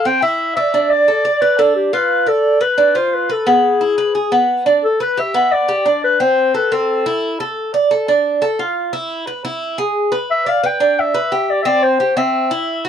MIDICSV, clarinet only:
0, 0, Header, 1, 2, 480
1, 0, Start_track
1, 0, Tempo, 341297
1, 1035, Time_signature, 4, 2, 24, 8
1, 18127, End_track
2, 0, Start_track
2, 0, Title_t, "Clarinet"
2, 0, Program_c, 0, 71
2, 87, Note_on_c, 0, 79, 89
2, 313, Note_off_c, 0, 79, 0
2, 322, Note_on_c, 0, 76, 91
2, 766, Note_off_c, 0, 76, 0
2, 791, Note_on_c, 0, 76, 87
2, 1268, Note_on_c, 0, 74, 93
2, 1289, Note_off_c, 0, 76, 0
2, 1994, Note_on_c, 0, 71, 86
2, 2015, Note_off_c, 0, 74, 0
2, 2236, Note_on_c, 0, 69, 82
2, 2257, Note_off_c, 0, 71, 0
2, 2464, Note_off_c, 0, 69, 0
2, 2473, Note_on_c, 0, 67, 69
2, 2721, Note_on_c, 0, 71, 86
2, 2742, Note_off_c, 0, 67, 0
2, 3204, Note_on_c, 0, 69, 84
2, 3225, Note_off_c, 0, 71, 0
2, 3677, Note_on_c, 0, 71, 78
2, 3698, Note_off_c, 0, 69, 0
2, 4165, Note_on_c, 0, 72, 81
2, 4187, Note_off_c, 0, 71, 0
2, 4420, Note_on_c, 0, 71, 67
2, 4441, Note_off_c, 0, 72, 0
2, 4662, Note_on_c, 0, 69, 68
2, 4683, Note_off_c, 0, 71, 0
2, 4884, Note_off_c, 0, 69, 0
2, 4892, Note_on_c, 0, 68, 81
2, 6272, Note_off_c, 0, 68, 0
2, 6812, Note_on_c, 0, 69, 93
2, 7031, Note_off_c, 0, 69, 0
2, 7062, Note_on_c, 0, 71, 77
2, 7307, Note_on_c, 0, 76, 83
2, 7328, Note_off_c, 0, 71, 0
2, 7761, Note_on_c, 0, 74, 90
2, 7782, Note_off_c, 0, 76, 0
2, 8482, Note_off_c, 0, 74, 0
2, 8493, Note_on_c, 0, 71, 86
2, 8734, Note_on_c, 0, 72, 92
2, 8755, Note_off_c, 0, 71, 0
2, 9208, Note_off_c, 0, 72, 0
2, 9215, Note_on_c, 0, 71, 72
2, 9458, Note_on_c, 0, 69, 68
2, 9479, Note_off_c, 0, 71, 0
2, 10410, Note_off_c, 0, 69, 0
2, 14497, Note_on_c, 0, 76, 96
2, 14748, Note_on_c, 0, 77, 87
2, 14769, Note_off_c, 0, 76, 0
2, 14993, Note_on_c, 0, 79, 89
2, 15014, Note_off_c, 0, 77, 0
2, 15466, Note_on_c, 0, 76, 94
2, 15487, Note_off_c, 0, 79, 0
2, 16175, Note_on_c, 0, 74, 85
2, 16196, Note_off_c, 0, 76, 0
2, 16346, Note_off_c, 0, 74, 0
2, 16351, Note_on_c, 0, 76, 58
2, 16403, Note_on_c, 0, 74, 99
2, 16424, Note_off_c, 0, 76, 0
2, 16641, Note_on_c, 0, 72, 86
2, 16662, Note_off_c, 0, 74, 0
2, 17120, Note_on_c, 0, 76, 76
2, 17141, Note_off_c, 0, 72, 0
2, 18077, Note_off_c, 0, 76, 0
2, 18127, End_track
0, 0, End_of_file